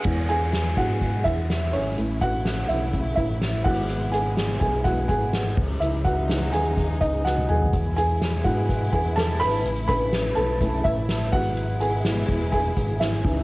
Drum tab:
CC |x---------------|--------------x-|--------------x-|----------------|
HH |--x-x-x-x-x-x-o-|x-x-x-x-x-x-x---|x-x-x-x-x-x-x---|x-x-x-x-x-x-----|
SD |----o-------o---|----o-------o---|----o---o---o---|----o---o---o---|
T1 |----------------|----------------|----------------|-------------o--|
T2 |----------------|----------------|----------------|--------------o-|
FT |----------------|----------------|----------------|---------------o|
BD |o-----o-o-o-----|--o-----o-o---o-|------o-o-o---o-|--o-----o-o-----|

CC |----------------|----------------|----------------|
HH |x-x-x-x-x-x-x-o-|x-x-x-x-x-x-x-o-|x-x-x-x-x-x-x-o-|
SD |----o---o---o---|----o---o---o---|----o-------o---|
T1 |----------------|----------------|----------------|
T2 |----------------|----------------|----------------|
FT |----------------|----------------|----------------|
BD |o-----o-o-o-----|--o-----o-o---o-|------o-o-o---o-|